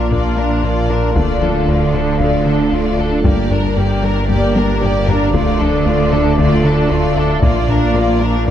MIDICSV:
0, 0, Header, 1, 11, 480
1, 0, Start_track
1, 0, Key_signature, -1, "minor"
1, 0, Tempo, 521739
1, 1075, Time_signature, 4, 2, 24, 8
1, 7825, End_track
2, 0, Start_track
2, 0, Title_t, "Violin section"
2, 0, Program_c, 0, 48
2, 0, Note_on_c, 0, 70, 43
2, 113, Note_off_c, 0, 70, 0
2, 113, Note_on_c, 0, 74, 46
2, 337, Note_off_c, 0, 74, 0
2, 350, Note_on_c, 0, 70, 41
2, 592, Note_off_c, 0, 70, 0
2, 603, Note_on_c, 0, 74, 46
2, 838, Note_on_c, 0, 70, 40
2, 839, Note_off_c, 0, 74, 0
2, 1074, Note_on_c, 0, 74, 43
2, 1076, Note_off_c, 0, 70, 0
2, 1297, Note_off_c, 0, 74, 0
2, 1314, Note_on_c, 0, 69, 43
2, 1552, Note_on_c, 0, 74, 43
2, 1554, Note_off_c, 0, 69, 0
2, 1793, Note_off_c, 0, 74, 0
2, 1798, Note_on_c, 0, 69, 45
2, 2029, Note_on_c, 0, 74, 58
2, 2036, Note_off_c, 0, 69, 0
2, 2255, Note_off_c, 0, 74, 0
2, 2269, Note_on_c, 0, 69, 48
2, 2506, Note_on_c, 0, 74, 52
2, 2512, Note_off_c, 0, 69, 0
2, 2746, Note_on_c, 0, 69, 46
2, 2750, Note_off_c, 0, 74, 0
2, 2990, Note_off_c, 0, 69, 0
2, 2994, Note_on_c, 0, 74, 51
2, 3218, Note_off_c, 0, 74, 0
2, 3243, Note_on_c, 0, 70, 50
2, 3473, Note_on_c, 0, 74, 51
2, 3478, Note_off_c, 0, 70, 0
2, 3713, Note_off_c, 0, 74, 0
2, 3716, Note_on_c, 0, 70, 49
2, 3942, Note_on_c, 0, 74, 63
2, 3955, Note_off_c, 0, 70, 0
2, 4171, Note_off_c, 0, 74, 0
2, 4193, Note_on_c, 0, 70, 53
2, 4434, Note_off_c, 0, 70, 0
2, 4439, Note_on_c, 0, 74, 60
2, 4677, Note_off_c, 0, 74, 0
2, 4677, Note_on_c, 0, 70, 51
2, 4913, Note_on_c, 0, 74, 57
2, 4915, Note_off_c, 0, 70, 0
2, 5137, Note_off_c, 0, 74, 0
2, 5153, Note_on_c, 0, 69, 54
2, 5392, Note_on_c, 0, 74, 50
2, 5394, Note_off_c, 0, 69, 0
2, 5633, Note_off_c, 0, 74, 0
2, 5639, Note_on_c, 0, 69, 56
2, 5876, Note_on_c, 0, 74, 66
2, 5877, Note_off_c, 0, 69, 0
2, 6098, Note_off_c, 0, 74, 0
2, 6119, Note_on_c, 0, 69, 56
2, 6357, Note_off_c, 0, 69, 0
2, 6358, Note_on_c, 0, 74, 61
2, 6596, Note_off_c, 0, 74, 0
2, 6609, Note_on_c, 0, 69, 53
2, 6841, Note_off_c, 0, 69, 0
2, 6843, Note_on_c, 0, 74, 58
2, 7062, Note_off_c, 0, 74, 0
2, 7081, Note_on_c, 0, 70, 59
2, 7318, Note_off_c, 0, 70, 0
2, 7325, Note_on_c, 0, 74, 59
2, 7560, Note_off_c, 0, 74, 0
2, 7561, Note_on_c, 0, 70, 55
2, 7797, Note_off_c, 0, 70, 0
2, 7825, End_track
3, 0, Start_track
3, 0, Title_t, "Violin section"
3, 0, Program_c, 1, 48
3, 0, Note_on_c, 1, 62, 38
3, 117, Note_on_c, 1, 65, 41
3, 119, Note_off_c, 1, 62, 0
3, 339, Note_off_c, 1, 65, 0
3, 350, Note_on_c, 1, 62, 40
3, 592, Note_off_c, 1, 62, 0
3, 594, Note_on_c, 1, 65, 45
3, 834, Note_off_c, 1, 65, 0
3, 844, Note_on_c, 1, 62, 40
3, 1079, Note_off_c, 1, 62, 0
3, 1082, Note_on_c, 1, 65, 45
3, 1302, Note_off_c, 1, 65, 0
3, 1322, Note_on_c, 1, 62, 38
3, 1558, Note_off_c, 1, 62, 0
3, 1562, Note_on_c, 1, 65, 44
3, 1798, Note_off_c, 1, 65, 0
3, 1803, Note_on_c, 1, 62, 44
3, 2037, Note_on_c, 1, 65, 44
3, 2039, Note_off_c, 1, 62, 0
3, 2259, Note_off_c, 1, 65, 0
3, 2273, Note_on_c, 1, 62, 46
3, 2513, Note_on_c, 1, 65, 50
3, 2514, Note_off_c, 1, 62, 0
3, 2746, Note_on_c, 1, 62, 46
3, 2753, Note_off_c, 1, 65, 0
3, 2990, Note_off_c, 1, 62, 0
3, 2998, Note_on_c, 1, 67, 55
3, 3220, Note_off_c, 1, 67, 0
3, 3234, Note_on_c, 1, 70, 45
3, 3474, Note_off_c, 1, 70, 0
3, 3480, Note_on_c, 1, 67, 52
3, 3710, Note_on_c, 1, 70, 51
3, 3717, Note_off_c, 1, 67, 0
3, 3952, Note_off_c, 1, 70, 0
3, 3959, Note_on_c, 1, 67, 57
3, 4180, Note_off_c, 1, 67, 0
3, 4211, Note_on_c, 1, 70, 51
3, 4443, Note_off_c, 1, 70, 0
3, 4446, Note_on_c, 1, 67, 57
3, 4680, Note_off_c, 1, 67, 0
3, 4690, Note_on_c, 1, 70, 51
3, 4922, Note_off_c, 1, 70, 0
3, 4923, Note_on_c, 1, 65, 53
3, 5142, Note_off_c, 1, 65, 0
3, 5161, Note_on_c, 1, 62, 50
3, 5397, Note_on_c, 1, 65, 59
3, 5398, Note_off_c, 1, 62, 0
3, 5636, Note_off_c, 1, 65, 0
3, 5641, Note_on_c, 1, 62, 52
3, 5877, Note_on_c, 1, 65, 59
3, 5878, Note_off_c, 1, 62, 0
3, 6099, Note_off_c, 1, 65, 0
3, 6116, Note_on_c, 1, 62, 56
3, 6355, Note_off_c, 1, 62, 0
3, 6362, Note_on_c, 1, 65, 59
3, 6598, Note_off_c, 1, 65, 0
3, 6601, Note_on_c, 1, 62, 61
3, 6838, Note_off_c, 1, 62, 0
3, 6854, Note_on_c, 1, 65, 57
3, 7068, Note_off_c, 1, 65, 0
3, 7106, Note_on_c, 1, 62, 54
3, 7330, Note_off_c, 1, 62, 0
3, 7338, Note_on_c, 1, 65, 54
3, 7566, Note_off_c, 1, 65, 0
3, 7582, Note_on_c, 1, 62, 57
3, 7808, Note_off_c, 1, 62, 0
3, 7825, End_track
4, 0, Start_track
4, 0, Title_t, "Synth drone"
4, 0, Program_c, 2, 95
4, 0, Note_on_c, 2, 58, 66
4, 0, Note_on_c, 2, 62, 61
4, 0, Note_on_c, 2, 65, 60
4, 0, Note_on_c, 2, 74, 61
4, 1066, Note_on_c, 2, 57, 69
4, 1081, Note_off_c, 2, 58, 0
4, 2955, Note_off_c, 2, 65, 0
4, 2956, Note_off_c, 2, 74, 0
4, 2957, Note_off_c, 2, 62, 0
4, 2990, Note_off_c, 2, 57, 0
4, 3002, Note_on_c, 2, 62, 65
4, 3004, Note_on_c, 2, 58, 72
4, 3004, Note_on_c, 2, 67, 71
4, 3006, Note_on_c, 2, 74, 65
4, 4910, Note_on_c, 2, 57, 72
4, 4911, Note_on_c, 2, 65, 62
4, 4919, Note_off_c, 2, 58, 0
4, 4919, Note_off_c, 2, 67, 0
4, 6831, Note_on_c, 2, 58, 67
4, 6832, Note_off_c, 2, 57, 0
4, 7825, Note_off_c, 2, 58, 0
4, 7825, Note_off_c, 2, 62, 0
4, 7825, Note_off_c, 2, 65, 0
4, 7825, Note_off_c, 2, 74, 0
4, 7825, End_track
5, 0, Start_track
5, 0, Title_t, "Synth pluck"
5, 0, Program_c, 3, 84
5, 111, Note_on_c, 3, 58, 76
5, 256, Note_off_c, 3, 58, 0
5, 590, Note_on_c, 3, 70, 55
5, 735, Note_off_c, 3, 70, 0
5, 832, Note_on_c, 3, 70, 57
5, 976, Note_off_c, 3, 70, 0
5, 1068, Note_on_c, 3, 50, 74
5, 1214, Note_off_c, 3, 50, 0
5, 1305, Note_on_c, 3, 53, 55
5, 1452, Note_off_c, 3, 53, 0
5, 1549, Note_on_c, 3, 62, 56
5, 1695, Note_off_c, 3, 62, 0
5, 1787, Note_on_c, 3, 57, 55
5, 1934, Note_off_c, 3, 57, 0
5, 2025, Note_on_c, 3, 50, 68
5, 2171, Note_off_c, 3, 50, 0
5, 2503, Note_on_c, 3, 62, 52
5, 2650, Note_off_c, 3, 62, 0
5, 2746, Note_on_c, 3, 62, 61
5, 2893, Note_off_c, 3, 62, 0
5, 2981, Note_on_c, 3, 55, 81
5, 3129, Note_off_c, 3, 55, 0
5, 3224, Note_on_c, 3, 58, 57
5, 3371, Note_off_c, 3, 58, 0
5, 3464, Note_on_c, 3, 67, 57
5, 3611, Note_off_c, 3, 67, 0
5, 3702, Note_on_c, 3, 62, 57
5, 3850, Note_off_c, 3, 62, 0
5, 3945, Note_on_c, 3, 55, 77
5, 4092, Note_off_c, 3, 55, 0
5, 4421, Note_on_c, 3, 67, 57
5, 4569, Note_off_c, 3, 67, 0
5, 4663, Note_on_c, 3, 67, 59
5, 4810, Note_off_c, 3, 67, 0
5, 4906, Note_on_c, 3, 50, 78
5, 5053, Note_off_c, 3, 50, 0
5, 5148, Note_on_c, 3, 53, 55
5, 5294, Note_off_c, 3, 53, 0
5, 5386, Note_on_c, 3, 62, 64
5, 5532, Note_off_c, 3, 62, 0
5, 5629, Note_on_c, 3, 57, 59
5, 5775, Note_off_c, 3, 57, 0
5, 5873, Note_on_c, 3, 50, 82
5, 6017, Note_off_c, 3, 50, 0
5, 6353, Note_on_c, 3, 62, 55
5, 6497, Note_off_c, 3, 62, 0
5, 6588, Note_on_c, 3, 62, 60
5, 6734, Note_off_c, 3, 62, 0
5, 6830, Note_on_c, 3, 58, 81
5, 6975, Note_off_c, 3, 58, 0
5, 7063, Note_on_c, 3, 62, 59
5, 7210, Note_off_c, 3, 62, 0
5, 7309, Note_on_c, 3, 70, 59
5, 7455, Note_off_c, 3, 70, 0
5, 7547, Note_on_c, 3, 65, 60
5, 7693, Note_off_c, 3, 65, 0
5, 7789, Note_on_c, 3, 58, 80
5, 7825, Note_off_c, 3, 58, 0
5, 7825, End_track
6, 0, Start_track
6, 0, Title_t, "Viola section"
6, 0, Program_c, 4, 48
6, 0, Note_on_c, 4, 62, 37
6, 115, Note_off_c, 4, 62, 0
6, 115, Note_on_c, 4, 58, 42
6, 338, Note_off_c, 4, 58, 0
6, 348, Note_on_c, 4, 62, 46
6, 588, Note_on_c, 4, 58, 41
6, 591, Note_off_c, 4, 62, 0
6, 831, Note_off_c, 4, 58, 0
6, 833, Note_on_c, 4, 62, 43
6, 1066, Note_on_c, 4, 57, 47
6, 1073, Note_off_c, 4, 62, 0
6, 1293, Note_off_c, 4, 57, 0
6, 1313, Note_on_c, 4, 62, 44
6, 1549, Note_on_c, 4, 57, 41
6, 1554, Note_off_c, 4, 62, 0
6, 1787, Note_on_c, 4, 62, 47
6, 1792, Note_off_c, 4, 57, 0
6, 2028, Note_on_c, 4, 57, 50
6, 2031, Note_off_c, 4, 62, 0
6, 2254, Note_off_c, 4, 57, 0
6, 2269, Note_on_c, 4, 62, 46
6, 2512, Note_off_c, 4, 62, 0
6, 2512, Note_on_c, 4, 57, 45
6, 2749, Note_on_c, 4, 62, 51
6, 2753, Note_off_c, 4, 57, 0
6, 2988, Note_on_c, 4, 58, 52
6, 2992, Note_off_c, 4, 62, 0
6, 3214, Note_off_c, 4, 58, 0
6, 3229, Note_on_c, 4, 62, 47
6, 3469, Note_on_c, 4, 58, 50
6, 3472, Note_off_c, 4, 62, 0
6, 3712, Note_off_c, 4, 58, 0
6, 3715, Note_on_c, 4, 62, 49
6, 3949, Note_on_c, 4, 58, 55
6, 3955, Note_off_c, 4, 62, 0
6, 4175, Note_off_c, 4, 58, 0
6, 4190, Note_on_c, 4, 62, 53
6, 4430, Note_on_c, 4, 58, 53
6, 4432, Note_off_c, 4, 62, 0
6, 4672, Note_off_c, 4, 58, 0
6, 4675, Note_on_c, 4, 62, 60
6, 4915, Note_off_c, 4, 62, 0
6, 4920, Note_on_c, 4, 57, 64
6, 5140, Note_off_c, 4, 57, 0
6, 5158, Note_on_c, 4, 62, 56
6, 5396, Note_off_c, 4, 62, 0
6, 5400, Note_on_c, 4, 57, 57
6, 5637, Note_off_c, 4, 57, 0
6, 5637, Note_on_c, 4, 62, 57
6, 5876, Note_off_c, 4, 62, 0
6, 5885, Note_on_c, 4, 57, 59
6, 6103, Note_off_c, 4, 57, 0
6, 6122, Note_on_c, 4, 62, 58
6, 6354, Note_on_c, 4, 57, 61
6, 6358, Note_off_c, 4, 62, 0
6, 6594, Note_off_c, 4, 57, 0
6, 6601, Note_on_c, 4, 62, 61
6, 6838, Note_off_c, 4, 62, 0
6, 6839, Note_on_c, 4, 58, 59
6, 7060, Note_off_c, 4, 58, 0
6, 7079, Note_on_c, 4, 62, 55
6, 7316, Note_off_c, 4, 62, 0
6, 7318, Note_on_c, 4, 58, 59
6, 7556, Note_off_c, 4, 58, 0
6, 7558, Note_on_c, 4, 62, 56
6, 7796, Note_off_c, 4, 62, 0
6, 7825, End_track
7, 0, Start_track
7, 0, Title_t, "Cello section"
7, 0, Program_c, 5, 48
7, 0, Note_on_c, 5, 46, 51
7, 1033, Note_off_c, 5, 46, 0
7, 1069, Note_on_c, 5, 50, 60
7, 2984, Note_on_c, 5, 43, 61
7, 2992, Note_off_c, 5, 50, 0
7, 4872, Note_off_c, 5, 43, 0
7, 4912, Note_on_c, 5, 50, 70
7, 6831, Note_on_c, 5, 46, 72
7, 6833, Note_off_c, 5, 50, 0
7, 7825, Note_off_c, 5, 46, 0
7, 7825, End_track
8, 0, Start_track
8, 0, Title_t, "Analog synth bass"
8, 0, Program_c, 6, 38
8, 105, Note_on_c, 6, 46, 72
8, 252, Note_off_c, 6, 46, 0
8, 340, Note_on_c, 6, 58, 58
8, 488, Note_off_c, 6, 58, 0
8, 584, Note_on_c, 6, 46, 53
8, 731, Note_off_c, 6, 46, 0
8, 823, Note_on_c, 6, 46, 48
8, 970, Note_off_c, 6, 46, 0
8, 1060, Note_on_c, 6, 38, 74
8, 1208, Note_off_c, 6, 38, 0
8, 1302, Note_on_c, 6, 38, 54
8, 1449, Note_off_c, 6, 38, 0
8, 1545, Note_on_c, 6, 38, 53
8, 1692, Note_off_c, 6, 38, 0
8, 1789, Note_on_c, 6, 50, 57
8, 1935, Note_off_c, 6, 50, 0
8, 2023, Note_on_c, 6, 38, 75
8, 2170, Note_off_c, 6, 38, 0
8, 2264, Note_on_c, 6, 50, 61
8, 2411, Note_off_c, 6, 50, 0
8, 2504, Note_on_c, 6, 38, 52
8, 2651, Note_off_c, 6, 38, 0
8, 2745, Note_on_c, 6, 38, 51
8, 2891, Note_off_c, 6, 38, 0
8, 2981, Note_on_c, 6, 43, 77
8, 3129, Note_off_c, 6, 43, 0
8, 3226, Note_on_c, 6, 43, 60
8, 3373, Note_off_c, 6, 43, 0
8, 3472, Note_on_c, 6, 43, 64
8, 3616, Note_off_c, 6, 43, 0
8, 3709, Note_on_c, 6, 55, 57
8, 3854, Note_off_c, 6, 55, 0
8, 3952, Note_on_c, 6, 43, 82
8, 4097, Note_off_c, 6, 43, 0
8, 4192, Note_on_c, 6, 55, 60
8, 4337, Note_off_c, 6, 55, 0
8, 4437, Note_on_c, 6, 43, 49
8, 4580, Note_off_c, 6, 43, 0
8, 4672, Note_on_c, 6, 43, 55
8, 4817, Note_off_c, 6, 43, 0
8, 4911, Note_on_c, 6, 38, 73
8, 5056, Note_off_c, 6, 38, 0
8, 5153, Note_on_c, 6, 38, 59
8, 5297, Note_off_c, 6, 38, 0
8, 5389, Note_on_c, 6, 38, 62
8, 5535, Note_off_c, 6, 38, 0
8, 5635, Note_on_c, 6, 50, 57
8, 5779, Note_off_c, 6, 50, 0
8, 5869, Note_on_c, 6, 38, 81
8, 6015, Note_off_c, 6, 38, 0
8, 6112, Note_on_c, 6, 50, 61
8, 6257, Note_off_c, 6, 50, 0
8, 6350, Note_on_c, 6, 38, 60
8, 6496, Note_off_c, 6, 38, 0
8, 6586, Note_on_c, 6, 38, 55
8, 6732, Note_off_c, 6, 38, 0
8, 6825, Note_on_c, 6, 46, 81
8, 6972, Note_off_c, 6, 46, 0
8, 7067, Note_on_c, 6, 46, 59
8, 7213, Note_off_c, 6, 46, 0
8, 7303, Note_on_c, 6, 46, 61
8, 7451, Note_off_c, 6, 46, 0
8, 7552, Note_on_c, 6, 58, 56
8, 7697, Note_off_c, 6, 58, 0
8, 7796, Note_on_c, 6, 46, 80
8, 7825, Note_off_c, 6, 46, 0
8, 7825, End_track
9, 0, Start_track
9, 0, Title_t, "Double bass section"
9, 0, Program_c, 7, 48
9, 0, Note_on_c, 7, 34, 51
9, 1035, Note_off_c, 7, 34, 0
9, 1065, Note_on_c, 7, 38, 60
9, 2987, Note_on_c, 7, 31, 66
9, 2989, Note_off_c, 7, 38, 0
9, 4874, Note_off_c, 7, 31, 0
9, 4910, Note_on_c, 7, 38, 76
9, 6832, Note_off_c, 7, 38, 0
9, 6833, Note_on_c, 7, 34, 73
9, 7825, Note_off_c, 7, 34, 0
9, 7825, End_track
10, 0, Start_track
10, 0, Title_t, "Sub bass"
10, 0, Program_c, 8, 38
10, 0, Note_on_c, 8, 34, 64
10, 1072, Note_on_c, 8, 26, 68
10, 1086, Note_off_c, 8, 34, 0
10, 2982, Note_on_c, 8, 31, 68
10, 2996, Note_off_c, 8, 26, 0
10, 4915, Note_on_c, 8, 26, 70
10, 4929, Note_off_c, 8, 31, 0
10, 6837, Note_on_c, 8, 34, 66
10, 6850, Note_off_c, 8, 26, 0
10, 7825, Note_off_c, 8, 34, 0
10, 7825, End_track
11, 0, Start_track
11, 0, Title_t, "Taiko and cinematic ensemble drums"
11, 112, Note_on_c, 9, 41, 66
11, 204, Note_off_c, 9, 41, 0
11, 1065, Note_on_c, 9, 41, 93
11, 1157, Note_off_c, 9, 41, 0
11, 2027, Note_on_c, 9, 41, 65
11, 2119, Note_off_c, 9, 41, 0
11, 2993, Note_on_c, 9, 41, 95
11, 3085, Note_off_c, 9, 41, 0
11, 3955, Note_on_c, 9, 41, 73
11, 4047, Note_off_c, 9, 41, 0
11, 4194, Note_on_c, 9, 48, 65
11, 4286, Note_off_c, 9, 48, 0
11, 4436, Note_on_c, 9, 45, 83
11, 4528, Note_off_c, 9, 45, 0
11, 4676, Note_on_c, 9, 43, 86
11, 4768, Note_off_c, 9, 43, 0
11, 4917, Note_on_c, 9, 41, 95
11, 5009, Note_off_c, 9, 41, 0
11, 5878, Note_on_c, 9, 41, 77
11, 5970, Note_off_c, 9, 41, 0
11, 6834, Note_on_c, 9, 41, 99
11, 6926, Note_off_c, 9, 41, 0
11, 7825, End_track
0, 0, End_of_file